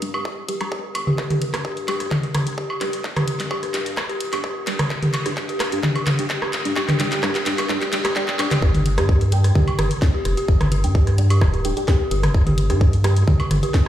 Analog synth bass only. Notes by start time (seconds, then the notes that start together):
Already playing: G2
0.25 D1
0.95 G1
1.18 G1
1.54 G2
2.34 G1
2.81 F1
3.04 G1
3.40 G2
3.97 D1
4.33 G1
4.56 G1
4.90 G1
5.26 G2
6.07 G1
6.53 F1
6.76 G1
7.12 G2
7.69 D1
7.93 D2
8.28 D1
8.51 G1
8.62 G1
8.98 G2
9.79 G1
10.25 F1
10.48 G1
10.84 G2
11.41 D1
12.11 G1
12.34 G1
12.70 G2
13.51 G1